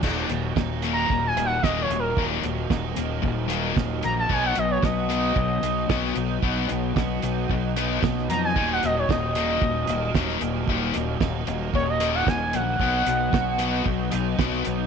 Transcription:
<<
  \new Staff \with { instrumentName = "Analog synth lead" } { \time 4/4 \key ees \minor \tempo 4 = 113 r4 \tuplet 3/2 { r4 bes''8~ bes''8 aes''8 ges''8 ees''8 des''8 bes'8~ } | bes'16 r2. r16 bes''16 a''16 | aes''16 fis''16 dis''16 des''16 dis''2. | r2. r8 bes''16 aes''16 |
aes''16 ges''16 ees''16 des''16 ees''2. | r2 des''16 ees''8 ges''16 aes''8 ges''8~ | ges''2~ ges''8 r4. | }
  \new Staff \with { instrumentName = "Analog synth pad" } { \time 4/4 \key ees \minor << { <ges' ees''>1~ | <ges' ees''>1~ | <ges' ees''>1~ | <ges' ees''>1~ |
<ges' ees''>1~ | <ges' ees''>1 | <fis' dis''>1 | } \\ { bes1~ | bes1 | b1~ | b1 |
bes1~ | bes1 | b1 | } >> }
  \new Staff \with { instrumentName = "Overdriven electric guitar" } { \time 4/4 \key ees \minor ees,8 ges8 ees'8 bes8 ees8 bes8 ges8 bes8 | ees,8 ges8 ees'8 bes8 ees8 bes8 ges8 bes8 | b,8 b8 fis'8 dis'8 fis8 dis'8 b8 dis'8 | b,8 b8 fis'8 dis'8 fis8 dis'8 b8 dis'8 |
ees,8 ges8 ees'8 bes8 ees8 bes8 ges8 bes8 | ees,8 ges8 ees'8 bes8 ees8 bes8 ges8 bes8 | b,8 b8 fis'8 dis'8 fis8 dis'8 b8 dis'8 | }
  \new Staff \with { instrumentName = "Overdriven electric guitar" } { \clef bass \time 4/4 \key ees \minor <ees, bes, ees>8 <ees, bes,>8 <ees, bes,>8 <ees, bes, ees>8 <ees, bes,>8 <ees, bes,>8 <ees, bes, ees>8 <ees, bes,>8 | <ees, bes, ees>8 <ees, bes,>8 <ees, bes,>8 <ees, bes,>8 <ees, bes,>8 <ees, bes, ees>8 <ees, bes,>8 <ees, bes,>8 | <b, fis b>8 <b, fis>8 <b, fis>8 <b, fis b>8 <b, fis>8 <b, fis>8 <b, fis b>8 <b, fis>8 | <b, fis b>8 <b, fis>8 <b, fis>8 <b, fis>8 <b, fis>8 <b, fis b>8 <b, fis>8 <b, fis>8 |
<ees, bes, ees>8 <ees, bes,>8 <ees, bes,>8 <ees, bes, ees>8 <ees, bes,>8 <ees, bes,>8 <ees, bes, ees>8 <ees, bes,>8 | <ees, bes, ees>8 <ees, bes,>8 <ees, bes,>8 <ees, bes,>8 <ees, bes,>8 <ees, bes, ees>8 <ees, bes,>8 <ees, bes,>8 | <b, fis b>8 <b, fis>8 <b, fis>8 <b, fis b>8 <b, fis>8 <b, fis>8 <b, fis b>8 <b, fis>8 | }
  \new Staff \with { instrumentName = "Fingered electric bass" } { \clef bass \time 4/4 \key ees \minor ees,,8 ees,,8 ees,,4 ees,,8 ees,,8 ees,,8 ees,,8 | ees,,8 ees,,8 ees,,8 ees,,8 ees,,4 ees,,8 bes,,8 | b,,8 b,,8 b,,4 b,,8 b,,8 b,,8 b,,8 | b,,8 b,,8 b,,8 b,,8 b,,4 b,,8 f,8 |
ees,,8 ees,,8 ees,,4 ees,,8 ees,,8 ees,,8 ees,,8 | ees,,8 ees,,8 ees,,8 ees,,8 ees,,4 ees,,8 bes,,8 | b,,8 b,,8 b,,4 b,,8 b,,8 b,,8 b,,8 | }
  \new DrumStaff \with { instrumentName = "Drums" } \drummode { \time 4/4 <cymc bd>8 hh8 <bd sn>8 hh8 bd8 hh8 <bd sn>8 hh8 | bd8 hh8 <bd sn>8 hh8 bd8 hh8 <bd sn>8 hh8 | bd8 hh8 <bd sn>8 hh8 bd8 hh8 <bd sn>16 sn16 hh8 | bd8 hh8 <bd sn>8 hh8 bd8 hh8 <bd sn>16 sn16 <hh sn>8 |
bd8 hh8 <bd sn>8 hh8 bd8 hh8 <bd sn>16 sn16 hh8 | bd8 hh8 <bd sn>8 hh8 bd8 hh8 <bd sn>8 <hh sn>8 | bd8 hh8 <bd sn>8 hh8 bd8 hh8 <bd sn>16 sn16 hh8 | }
>>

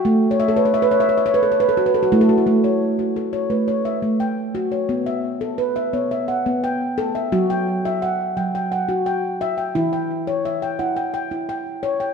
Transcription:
<<
  \new Staff \with { instrumentName = "Handpan" } { \time 7/8 \key a \major \tempo 4 = 86 << { g''16 r32 cis''32 e''32 a'32 b'32 cis''32 e''32 b'16 e''32 cis''32 e''16 b'32 a'32 cis''32 b'32 a'16 b'32 a'32 fis'32 e'32 a'32 fis'32 e'32~ | e'32 r32 cis''8. a'16 cis''16 b'16 cis''16 e''8 g''8. cis''16~ | cis''16 e''8. b'16 e''16 cis''16 e''16 fis''8 g''8. e''16~ | e''16 g''8. fis''8 g''16 g''16 fis''8 g''8. g''16~ |
g''16 g''8. e''16 g''16 fis''16 g''16 g''8 g''8. g''16 | } \\ { a8 r16 cis''8 cis''8 cis''8 r16 fis'8 a8 | a8 r16 fis'8 r16 a8 r16 a8 r16 fis'8 | r8. a'8 r16 b8 r16 b8 r16 a'8 | fis'8 r16 e''8 r16 fis8 r16 fis'8 r16 e''8 |
e'8 r16 cis''8 r16 e'8 r16 e'8 r16 cis''8 | } >> }
  \new Staff \with { instrumentName = "Handpan" } { \clef bass \time 7/8 \key a \major r2. r8 | r2. r8 | b2.~ b8 | fis2.~ fis8 |
e2.~ e8 | }
>>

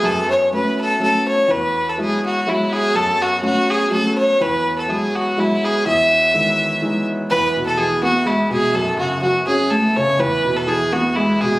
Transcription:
<<
  \new Staff \with { instrumentName = "Fiddle" } { \time 3/4 \key e \major \tempo 4 = 124 a'8 cis''8 b'8 a'8 a'8 cis''8 | b'8. a'16 gis'8 fis'8 e'8 gis'8 | a'8 fis'8 fis'8 gis'8 a'8 cis''8 | b'8. a'16 gis'8 fis'8 e'8 gis'8 |
e''2~ e''8 r8 | b'8. a'16 gis'8 fis'8 e'8 gis'8 | a'8 fis'8 fis'8 gis'8 a'8 cis''8 | b'8. a'16 gis'8 fis'8 e'8 gis'8 | }
  \new Staff \with { instrumentName = "Accordion" } { \clef bass \time 3/4 \key e \major <e b>2. | <fis b>2.~ | <fis b>2.~ | <fis b>2.~ |
<fis b>2. | <e b>2.~ | <e b>2.~ | <e b>2. | }
  \new Staff \with { instrumentName = "Grand piano" } { \clef bass \time 3/4 \key e \major fis,4 <fis a cis'>4 <fis a cis'>4 | e,4 <fis gis e'>4 <fis gis e'>4 | fis,4 <fis a cis'>4 <fis a cis'>4 | e,4 <fis gis e'>4 <fis gis e'>4 |
e,4 <dis e gis>4 <e gis dis'>4 | e,8 b,8 e8 b8 gis8 b,8 | fis,8 cis8 fis8 cis'8 a8 cis8 | e,8 b,8 e8 b8 gis8 b,8 | }
>>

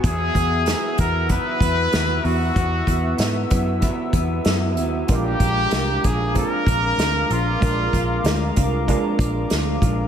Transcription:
<<
  \new Staff \with { instrumentName = "Analog synth pad" } { \time 4/4 \key e \lydian \tempo 4 = 95 <b e'' fis'' e'''>1~ | <b e'' fis'' e'''>1 | <ais' eis'' ais'' d'''>1~ | <ais' eis'' ais'' d'''>1 | }
  \new Staff \with { instrumentName = "Trumpet" } { \time 4/4 \key e \lydian gis'4. ais'8 b'4. fis'8~ | fis'4. r2 r8 | g'4. gis'8 ais'4. eis'8~ | eis'4. r2 r8 | }
  \new Staff \with { instrumentName = "Synth keys" } { \time 4/4 \key e \lydian r1 | r1 | <gis d' eis' ais'>4. r8 <gis bis d' eis' ais'>4. r8 | <gis d' eis' ais'>4. r8 <gis d' eis' ais'>4. r8 | }
  \new Staff \with { instrumentName = "Clean electric guitar" } { \time 4/4 \key e \lydian <e fis b e'>8 <fis b e'>8 <e fis b e'>8 <fis b e'>8 <e fis b e'>8 <fis b e'>8 <fis b e'>8 <fis b e'>8 | <e fis b e'>8 <fis b e'>8 <e fis b e'>8 <fis b e'>8 <e fis b e'>8 <fis b e'>8 <e fis b e'>8 <fis b e'>8 | <ais, eis gis d' eis'>8 <gis d' eis'>8 <eis gis d' eis'>8 <gis d' eis'>8 <ais, eis gis d' eis'>8 <gis d' eis'>8 <eis gis d' eis'>8 <gis d' eis'>8 | <ais, eis gis d' eis'>8 <gis d' eis'>8 <eis gis d' eis'>8 <gis d' eis'>8 <ais, eis gis d' eis'>8 <gis d' eis'>8 <eis gis d' eis'>8 <gis d' eis'>8 | }
  \new Staff \with { instrumentName = "Picked electric bass" } { \clef bass \time 4/4 \key e \lydian e,8 e,8. r16 e,8. r16 e,8 dis,8 e,8 | e,8 e,8 gis,8 fis,8. r16 e,8 fis,8 dis,8 | ais,,8 ais,,8 bis,,8 ais,,8. r16 ais,,8 d,8 ais,,8 | ais,,8 ais,,8 d,8 bis,,8. r16 ais,,8 d,8 ais,,8 | }
  \new DrumStaff \with { instrumentName = "Drums" } \drummode { \time 4/4 <hh bd>8 <hh bd>8 <hh sn>8 <hh bd>8 <hh bd>8 <hh bd>8 <hh sn>8 hho8 | <hh bd>8 <hh bd>8 <hh sn>8 <hh bd>8 <hh bd>8 <hh bd>8 <hh sn>8 hh8 | <hh bd>8 <hh bd>8 <hh sn>8 <hh bd>8 <hh bd>8 <hh bd>8 <hh sn>8 hh8 | <hh bd>8 <hh bd>8 <hh sn>8 <hh bd>8 <hh bd>8 <hh bd>8 <hh sn>8 <hh bd>8 | }
>>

